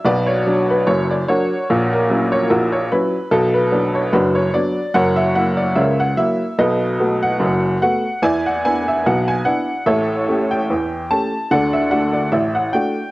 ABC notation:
X:1
M:2/4
L:1/16
Q:"Swing 16ths" 1/4=73
K:Bm
V:1 name="Upright piano"
[FBd] c2 B c d [F_Bc]2- | [F_Bc] ^A2 c [EFA] c =B2 | A B2 c [DFB] c d2 | [^Acf] e f d [Ace] f e2 |
[AB_e]3 f3 f2 | [de^g] f g e f g f2 | [Ace]3 g3 a2 | [Adf] e f d e f g2 |]
V:2 name="Upright piano" clef=bass
[B,,,B,,]2 [F,D]2 [F,,,F,,]2 [F,D]2 | [^A,,,^A,,]2 [F,CE]2 [A,,,A,,]2 [F,CE]2 | [B,,,B,,]2 [F,B,D]2 [F,,,F,,]2 [F,B,D]2 | [F,,,F,,]2 [F,^A,E]2 [C,,C,]2 [F,A,E]2 |
[B,,,B,,]2 [A,B,F]2 [F,,,F,,]2 [A,B,F]2 | [E,,E,]2 [B,DE]2 [B,,,B,,]2 [B,DE]2 | [A,,,A,,]2 [A,CG]2 [E,,E,]2 [A,CG]2 | [D,,D,]2 [A,DF]2 [A,,,A,,]2 [A,DF]2 |]